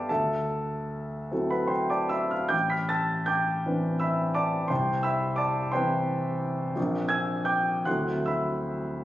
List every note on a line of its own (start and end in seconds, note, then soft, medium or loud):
0.00 0.12 G3 soft
0.00 0.11 B3 soft
0.00 0.12 D4 soft
0.00 0.10 A4 soft
0.00 0.12 D5 soft
0.00 0.11 E5 medium
0.00 0.11 F5 medium
0.00 0.12 G5 medium
0.00 0.09 A5 soft
0.00 0.11 B5 medium
0.00 0.12 C6 medium
0.00 0.12 D6 medium
0.00 0.12 E6 medium
0.00 0.12 F6 medium
0.00 0.12 G6 medium
0.09 1.28 D2 soft
0.09 1.31 A4 soft
0.09 1.48 E5 soft
0.09 1.51 A5 medium
1.32 2.49 F#3 soft
1.32 2.49 C4 soft
1.32 2.49 E4 soft
1.32 2.49 A4 soft
1.50 1.69 B4 soft
1.50 1.70 F#5 soft
1.50 1.71 B5 medium
1.68 1.88 C5 soft
1.68 1.88 G5 soft
1.68 1.90 C6 medium
1.90 2.10 D5 soft
1.90 2.11 A5 soft
1.90 2.12 D6 medium
2.09 2.31 E5 soft
2.09 2.31 B5 soft
2.09 2.32 E6 medium
2.31 2.51 F5 soft
2.31 2.51 B5 soft
2.31 2.52 F6 medium
2.49 3.61 A1 soft
2.49 2.69 G5 medium
2.49 2.69 D6 medium
2.49 2.70 G6 medium
2.70 2.88 B5 soft
2.70 2.89 F6 soft
2.70 2.90 B6 medium
2.89 3.25 A5 medium
2.89 3.25 E6 medium
2.89 3.27 A6 medium
3.26 3.96 G5 soft
3.26 3.96 D6 medium
3.26 3.99 G6 medium
3.66 4.67 E3 soft
3.66 4.67 C4 soft
3.66 4.67 D4 soft
3.66 4.67 B4 soft
4.00 4.33 E5 soft
4.00 4.33 B5 soft
4.00 4.35 E6 medium
4.35 4.68 D5 medium
4.35 4.68 A5 soft
4.35 4.70 D6 medium
4.68 5.71 C2 soft
4.68 5.02 C5 medium
4.68 5.02 G5 soft
4.68 5.04 C6 medium
5.03 5.37 E5 medium
5.03 5.37 B5 medium
5.03 5.39 E6 medium
5.36 5.71 D5 medium
5.36 5.71 A5 medium
5.36 5.72 D6 medium
5.72 6.73 E3 soft
5.72 6.73 C4 soft
5.72 6.73 E4 soft
5.72 6.73 B4 soft
5.72 6.72 C5 medium
5.72 6.73 G5 medium
5.72 6.76 C6 medium
6.76 7.82 A#1 soft
6.76 7.81 F3 soft
6.76 7.82 C4 soft
6.76 7.82 D4 soft
6.76 7.83 A#4 soft
7.09 7.44 G#5 medium
7.09 7.45 E6 medium
7.09 7.46 G#6 medium
7.45 7.82 G5 medium
7.45 7.82 D6 soft
7.45 7.84 G6 medium
7.85 9.04 D2 soft
7.85 9.04 F#3 soft
7.85 9.04 C4 soft
7.85 9.04 E4 soft
7.85 9.04 A4 soft
7.85 8.24 F#5 soft
7.85 8.25 C6 soft
7.85 8.27 F#6 medium
8.26 9.04 E5 soft
8.26 9.04 B5 soft
8.26 9.04 E6 medium